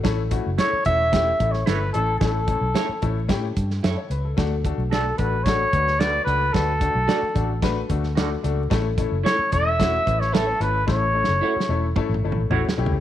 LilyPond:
<<
  \new Staff \with { instrumentName = "Trumpet" } { \time 4/4 \key a \mixolydian \tempo 4 = 111 r4 cis''8 e''4~ e''16 cis''16 b'8 a'8 | a'2 r2 | r4 a'8 b'8 cis''4 d''8 b'8 | a'2 r2 |
r4 cis''8 e''4~ e''16 cis''16 a'8 b'8 | cis''2 r2 | }
  \new Staff \with { instrumentName = "Clean electric guitar" } { \time 4/4 \key a \mixolydian r4 <e' a' cis''>8 r4. <e' a' cis''>8 r8 | r4 <e' a' cis''>8 r4. <e' a' cis''>8 r8 | r4 <fis' a' d''>8 r4. <fis' a' d''>8 r8 | r4 <fis' a' d''>8 r4. <fis' a' d''>8 r8 |
r4 <e' a' cis''>8 r4. <e' a' cis''>8 r8 | r4 <e' a' cis''>8 r4. <e' a' cis''>8 r8 | }
  \new Staff \with { instrumentName = "Grand piano" } { \time 4/4 \key a \mixolydian << { r1 | r2. e''16 cis''16 b'16 a'16~ | a'16 r2. r8. | r1 |
r1 | r1 | } \\ { <a cis' e' a'>8 <a cis' e' fis'>8 <a cis' e' a'>8 <a cis' e' a'>8 <a cis' e' g'>8 <a cis' e' a'>8 <a cis' e' a'>8 <a cis' e' a'>8 | <a cis' e' a'>8 <a cis' e' a'>8 <a cis' e' a'>8 <a cis' e' a'>8 <a cis' e' g'>8 r4. | <a d' fis' a'>8 <a d' fis' a'>8 <a d' fis' a'>8 <a d' fis' a'>8 <a d' fis' a'>8 <a d' fis' b'>8 <a d' fis' b'>8 <a d' fis' a'>8 | <a d' fis' b'>8 <a d' fis' a'>8 <a d' fis' a'>8 <a d' fis' a'>8 <a d' fis' b'>8 <a d' fis' a'>8 <a d' fis' a'>8 <a d' fis' a'>8 |
<a cis' e' a'>8 <a cis' e' a'>8 <a cis' e' a'>8 <a cis' e' a'>8 <a cis' e' fis'>8 <a cis' e' b'>8 <a cis' e' b'>8 <a cis' e' a'>8 | <a cis' e' a'>8 <a cis' e' a'>8 <a cis' e' fis'>8 <a cis' e' a'>8 <a cis' e' a'>8 <a cis' e' a'>8 <a cis' e' fis'>8 <a cis' e' g'>8 | } >> }
  \new Staff \with { instrumentName = "Fingered electric bass" } { \clef bass \time 4/4 \key a \mixolydian a,,8. fis,,16 r8 e,,4 a,,8 g,,8 a,,8 | a,,8. b,,16 r8 a,,8 a,8 g,8 fis,16 r16 cis,8 | d,8. b,,8. a,,4 d,4 cis,8 | d,8. b,,16 r8 a,,4 d,4 cis,8 |
a,,8. fis,,16 r8 e,,4 a,,4 gis,,8 | a,,8. fis,,16 r8 e,,8 r16 a,,16 g,,16 a,,16 a,,16 r16 b,,16 cis,16 | }
  \new DrumStaff \with { instrumentName = "Drums" } \drummode { \time 4/4 <hh bd sn>8 <hh bd>8 <hh sn>8 <hh bd>8 <hh bd sn>8 <hh bd>16 sn16 <hh sn>8 hh8 | <hh bd sn>8 <hh bd>8 <hh sn>8 <hh bd>8 <hh bd sn>8 <hh bd>16 sn16 <hh sn>8 hh8 | <hh bd sn>8 <hh bd>8 <hh sn>8 <hh bd>8 <hh bd sn>8 <hh bd>16 sn16 <hh sn>8 hh8 | <hh bd sn>8 <hh bd>8 <hh sn>8 <hh bd>8 <hh bd sn>8 <hh bd>16 sn16 <hh sn>8 hh8 |
<hh bd sn>8 <hh bd>8 <hh sn>8 <hh bd>8 <hh bd sn>8 <hh bd>16 sn16 <hh sn>8 hh8 | \tuplet 3/2 { <bd sn>8 r8 sn8 r8 sn8 r8 <bd toml>8 toml8 toml8 tomfh8 sn8 tomfh8 } | }
>>